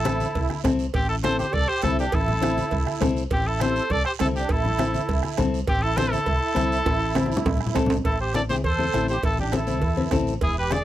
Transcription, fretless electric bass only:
Already playing: A1
0.35 C2
0.64 C2
0.94 A1
1.54 C2
1.83 C2
2.13 A1
2.72 C2
3.01 C2
3.31 A1
3.90 C2
4.20 C2
4.50 A1
5.09 C2
5.38 C2
5.68 A1
6.27 C2
6.56 C2
6.86 A1
7.45 C2
7.75 C2
8.05 A1
8.64 E2
8.94 A1
9.23 A1
9.82 E2
10.12 A1
10.41 E1

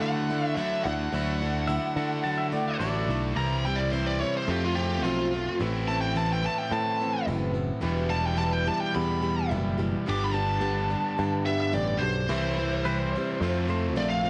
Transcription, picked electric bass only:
Already playing: D3
0.86 D2
1.13 D2
1.96 D3
2.80 A1
3.08 B1
3.36 C2
4.48 F2
5.03 B1
5.61 A1
6.71 A2
7.27 F#1
7.83 E1
8.96 E2
9.52 F#1
10.08 G1
11.19 G2
11.74 A1
12.02 B1
12.29 C2
13.41 F2
13.96 A#1

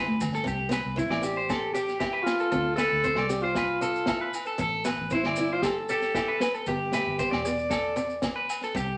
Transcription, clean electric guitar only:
Already playing: B4
0.35 A4
0.47 G4
0.73 B4
0.98 muted clean electric guitar stroke
1.11 D5
1.37 C5
1.50 A4
1.74 G4
2.00 G4
2.13 B4
2.40 A4
2.51 A4
2.78 B4
3.04 C5
3.18 D5
3.44 C5
3.57 B4
3.82 A4
4.08 A4
4.21 B4
4.47 A4
4.61 A4
4.86 B4
5.12 C5
5.27 D5
5.53 C5
5.64 A4
5.91 G4
6.15 G4
6.28 B4
6.55 A4
6.68 G4
6.93 B4
7.19 C5
7.31 D5
7.71 A4
7.97 muted clean electric guitar stroke
8.36 B4
8.64 A4
8.76 G4

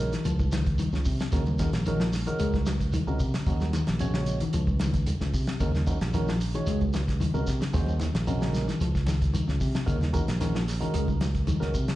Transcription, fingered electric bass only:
Already playing: A#1
0.25 C#2
0.93 C#2
1.06 C3
1.33 D#2
1.73 A#1
2.39 C#2
3.07 C#2
3.20 C3
3.46 D#2
3.89 A#1
4.54 C#2
5.21 C#2
5.34 C3
5.60 D#2
6.01 A#1
6.67 C#2
7.34 C#2
7.48 C3
7.74 D#2
8.14 A#1
8.81 C#2
9.49 C#2
9.61 C3
9.88 D#2
10.28 A#1
10.94 C#2
11.62 C#2
11.75 C3

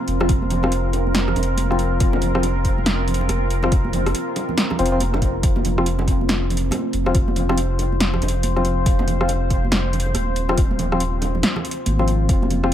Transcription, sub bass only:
0.08 F1
1.36 F1
2.00 F1
3.29 F1
4.79 F1
5.43 F1
6.93 F1
8.22 F1
8.86 F1
10.15 D#1
11.86 G#1
12.29 F1

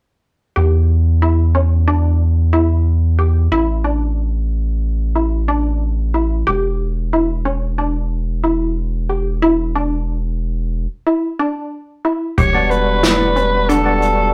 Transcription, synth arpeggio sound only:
0.56 G4
1.22 E4
1.55 C#4
1.88 D4
2.53 E4
3.19 G4
3.52 E4
3.84 D4
5.15 E4
5.48 D4
6.14 E4
6.47 G4
7.13 E4
7.45 C#4
7.78 D4
8.44 E4
9.09 G4
9.42 E4
9.75 D4
11.07 E4
11.39 D4
12.05 E4
12.38 G4
13.03 E4
13.36 C#4
13.69 D4

